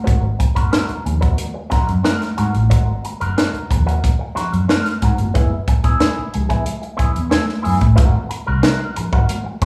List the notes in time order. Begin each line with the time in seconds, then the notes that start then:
0.04 G#1 C4 F#4 A#4, kick, closed hi-hat, muted conga
0.21 muted clean electric guitar stroke
0.39 muted clean electric guitar stroke, kick, closed hi-hat, muted conga
0.55 F#1 C4 F#4 A#4, kick, closed hi-hat
0.71 C4 F#4 A#4, snare, closed hi-hat, high conga
0.89 muted fingered electric bass stroke, closed hi-hat
1.05 D#2, muted clean electric guitar stroke, closed hi-hat, low conga
1.21 C4 F#4 A#4, kick, closed hi-hat
1.38 muted clean electric guitar stroke, closed hi-hat, muted conga
1.54 muted clean electric guitar stroke
1.70 C4 F#4 A#4, muted fingered electric bass stroke, kick, snare, closed hi-hat, low conga
1.87 F#2, muted clean electric guitar stroke, closed hi-hat
2.03 C4 F#4 A#4, snare, closed hi-hat, high conga
2.20 muted clean electric guitar stroke, snare, closed hi-hat
2.37 G#2 C4 F#4 A#4, closed hi-hat
2.53 A1, muted clean electric guitar stroke, closed hi-hat, high conga
2.70 G#1 C4 F#4 A#4, kick, closed hi-hat, muted conga
2.86 muted clean electric guitar stroke
3.04 muted clean electric guitar stroke, closed hi-hat, muted conga
3.20 F#1 C4 F#4 A#4, closed hi-hat
3.36 C4 F#4 A#4, snare, closed hi-hat, high conga
3.54 muted fingered electric bass stroke, closed hi-hat
3.70 D#2, muted clean electric guitar stroke, kick, closed hi-hat, low conga
3.86 C4 F#4 A#4, closed hi-hat
4.03 muted clean electric guitar stroke, kick, closed hi-hat, muted conga
4.19 muted clean electric guitar stroke
4.35 C4 F#4 A#4, muted fingered electric bass stroke, snare, closed hi-hat, low conga
4.53 F#2, muted clean electric guitar stroke, closed hi-hat
4.68 C4 F#4 A#4, snare, closed hi-hat, high conga
4.85 muted clean electric guitar stroke, snare, closed hi-hat
5.02 G#2 C4 F#4 A#4, kick, closed hi-hat
5.18 G1, muted clean electric guitar stroke, closed hi-hat, high conga
5.34 F#1 B3 E4 G#4, kick, closed hi-hat, muted conga
5.51 muted clean electric guitar stroke
5.68 muted clean electric guitar stroke, kick, closed hi-hat
5.84 E1 B3 E4 G#4, kick, closed hi-hat
5.99 B3 E4 G#4, snare, closed hi-hat, high conga
6.19 muted fingered electric bass stroke
6.33 C#2, muted clean electric guitar stroke, closed hi-hat, low conga
6.49 B3 E4 G#4, kick, closed hi-hat
6.65 muted clean electric guitar stroke, closed hi-hat, muted conga
6.82 muted clean electric guitar stroke, closed hi-hat
6.97 B3 E4 G#4, muted fingered electric bass stroke, kick, closed hi-hat, low conga
7.13 E2, muted clean electric guitar stroke, closed hi-hat
7.29 B3 E4 G#4, snare, closed hi-hat, high conga
7.47 muted clean electric guitar stroke, snare
7.62 B3 E4 G#4, open hi-hat
7.66 F#2
7.79 A1, muted clean electric guitar stroke, kick, closed hi-hat, high conga
7.96 G#1 C4 F#4 A#4, kick, closed hi-hat, muted conga
8.12 muted clean electric guitar stroke
8.29 muted clean electric guitar stroke, closed hi-hat
8.47 C2 C4 F#4 A#4
8.62 C4 F#4 A#4, snare, closed hi-hat, high conga
8.96 muted clean electric guitar stroke, muted fingered electric bass stroke, closed hi-hat, low conga
9.13 G#1 C4 F#4 A#4, kick
9.29 muted clean electric guitar stroke, closed hi-hat, muted conga
9.44 muted clean electric guitar stroke
9.62 C4, kick, closed hi-hat